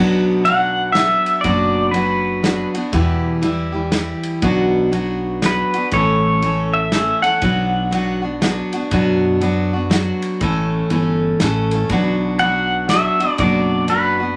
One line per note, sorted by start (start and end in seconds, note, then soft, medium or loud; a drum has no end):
0.00 1.13 B1 medium
0.00 0.45 B2 medium
0.00 0.43 F#3 medium
0.00 0.45 B3 medium
0.00 0.46 D4 medium
0.00 0.46 F#4 medium
0.44 0.93 F#3 medium
0.44 0.96 B3 medium
0.44 0.96 D4 medium
0.44 0.96 F#4 medium
0.44 0.92 F#5 medium
0.44 ride medium
0.92 1.42 F#3 medium
0.92 1.44 B3 medium
0.92 1.40 E5 medium
0.92 snare medium
0.92 ride medium
0.97 1.44 D4 medium
0.97 1.45 F#4 medium
1.26 ride medium
1.41 2.62 F#1 medium
1.41 1.94 B2 medium
1.41 1.91 F#3 medium
1.41 1.93 B3 medium
1.41 1.93 D4 medium
1.41 1.94 D5 medium
1.41 kick loud
1.41 ride medium
1.46 1.94 F#4 medium
1.91 2.41 F#3 medium
1.91 2.44 B3 medium
1.91 2.43 D4 medium
1.91 2.44 F#4 medium
1.91 2.70 B4 medium
1.91 ride medium
2.42 2.74 F#3 medium
2.42 2.75 B3 medium
2.42 2.75 D4 medium
2.42 2.73 F#4 medium
2.42 snare medium
2.42 ride medium
2.74 2.93 B3 soft
2.74 2.94 D4 soft
2.74 2.93 F#4 medium
2.74 ride medium
2.92 3.43 E2 medium
2.92 4.11 E2 medium
2.92 3.43 B2 medium
2.92 3.40 E3 medium
2.92 3.42 G3 medium
2.92 3.43 E4 medium
2.92 3.44 G4 medium
2.92 kick loud
2.92 ride medium
3.42 3.74 E3 medium
3.42 3.73 G3 medium
3.42 3.73 E4 medium
3.42 3.71 G4 medium
3.42 ride medium
3.72 3.90 E3 soft
3.72 3.92 G3 soft
3.72 3.93 E4 soft
3.72 3.92 G4 medium
3.91 4.42 E3 medium
3.91 4.42 G3 medium
3.91 4.43 E4 medium
3.91 4.44 G4 medium
3.91 snare medium
3.91 ride medium
4.23 ride medium
4.42 5.61 B1 medium
4.42 4.92 B2 medium
4.42 4.90 F#3 medium
4.42 4.91 B3 medium
4.42 4.92 D4 medium
4.42 4.93 F#4 medium
4.42 kick loud
4.42 ride medium
4.92 5.41 F#3 medium
4.92 5.42 B3 medium
4.92 5.43 D4 medium
4.92 5.43 F#4 medium
4.92 ride medium
5.42 5.73 F#3 medium
5.42 5.74 B3 medium
5.42 5.74 D4 medium
5.42 5.73 F#4 medium
5.42 snare medium
5.42 ride medium
5.46 5.95 B4 medium
5.74 5.93 D4 soft
5.74 5.93 F#4 soft
5.74 ride soft
5.78 5.93 B3 soft
5.91 7.10 A1 medium
5.91 6.42 A2 medium
5.91 6.41 E3 medium
5.91 6.42 A3 medium
5.91 6.43 C#4 medium
5.91 6.43 A4 medium
5.91 6.76 C#5 medium
5.91 kick loud
5.91 ride medium
6.42 6.91 E3 medium
6.42 6.92 A3 medium
6.42 6.93 C#4 medium
6.42 6.93 A4 medium
6.42 ride medium
6.74 7.22 E5 medium
6.92 7.23 E3 medium
6.92 7.24 A3 medium
6.92 7.23 C#4 medium
6.92 7.21 A4 medium
6.92 snare medium
6.92 ride medium
7.22 7.42 A3 soft
7.22 7.42 C#4 soft
7.22 7.41 A4 soft
7.22 8.18 F#5 medium
7.22 ride medium
7.41 8.60 B1 medium
7.41 7.91 B2 medium
7.41 7.90 F#3 medium
7.41 7.91 B3 medium
7.41 7.92 D4 medium
7.41 7.92 F#4 medium
7.41 kick loud
7.41 ride medium
7.91 8.22 F#3 medium
7.91 8.23 B3 medium
7.91 8.22 D4 medium
7.91 8.20 F#4 medium
7.91 ride medium
8.22 8.41 B3 soft
8.22 8.42 D4 soft
8.22 8.41 F#4 soft
8.41 8.72 F#3 medium
8.41 8.73 B3 medium
8.41 8.73 D4 medium
8.41 8.72 F#4 medium
8.41 snare medium
8.41 ride medium
8.73 8.92 B3 soft
8.73 8.92 D4 soft
8.73 8.92 F#4 medium
8.73 ride medium
8.91 10.09 F#2 medium
8.91 9.41 B2 medium
8.91 9.40 F#3 medium
8.91 9.41 B3 medium
8.91 9.42 D4 medium
8.91 9.42 F#4 medium
8.91 kick loud
8.91 ride medium
9.41 9.72 F#3 medium
9.41 9.72 B3 medium
9.41 9.73 D4 medium
9.41 9.72 F#4 medium
9.41 ride medium
9.73 9.90 B3 soft
9.73 9.90 D4 medium
9.73 9.91 F#4 medium
9.90 10.40 F#3 medium
9.90 10.40 B3 medium
9.90 10.41 D4 medium
9.90 10.41 F#4 medium
9.90 snare medium
9.90 ride medium
10.22 ride medium
10.40 10.80 A1 medium
10.40 10.90 A2 medium
10.40 10.90 E3 medium
10.40 10.91 A3 medium
10.40 10.91 C#4 medium
10.40 10.91 A4 medium
10.40 kick loud
10.40 ride medium
10.90 11.33 G1 medium
10.90 11.38 E3 medium
10.90 11.40 A3 medium
10.90 11.40 C#4 medium
10.90 11.41 A4 medium
10.90 ride medium
11.39 11.83 A1 medium
11.39 11.71 E3 medium
11.39 11.71 A3 medium
11.39 11.72 C#4 medium
11.39 11.71 A4 medium
11.39 snare medium
11.39 ride medium
11.71 11.91 A3 soft
11.71 11.91 C#4 soft
11.71 11.90 A4 soft
11.71 ride medium
11.89 13.08 B1 medium
11.89 12.40 B2 medium
11.89 12.39 F#3 medium
11.89 12.41 B3 medium
11.89 12.41 D4 medium
11.89 12.41 F#4 medium
11.89 kick loud
11.89 ride medium
12.39 12.89 F#3 medium
12.39 12.91 B3 medium
12.39 12.90 D4 medium
12.39 12.89 F#5 medium
12.39 ride medium
12.43 12.91 F#4 medium
12.89 13.21 F#3 medium
12.89 13.21 B3 medium
12.89 13.21 D4 medium
12.89 13.41 E5 medium
12.89 snare medium
12.89 ride medium
12.93 13.19 F#4 medium
13.20 13.39 B3 soft
13.20 13.40 D4 soft
13.20 13.39 F#4 soft
13.20 ride medium
13.38 14.37 F#1 medium
13.38 13.89 B2 medium
13.38 13.86 F#3 medium
13.38 13.88 B3 medium
13.38 13.89 D4 medium
13.38 13.90 F#4 medium
13.38 13.91 D5 medium
13.38 kick loud
13.38 ride medium
13.87 14.19 F#3 medium
13.87 14.20 B3 medium
13.87 14.20 D4 medium
13.87 14.18 F#4 medium
13.87 14.37 B4 medium
13.87 ride medium
14.19 14.37 B3 soft
14.19 14.37 D4 soft
14.19 14.37 F#4 soft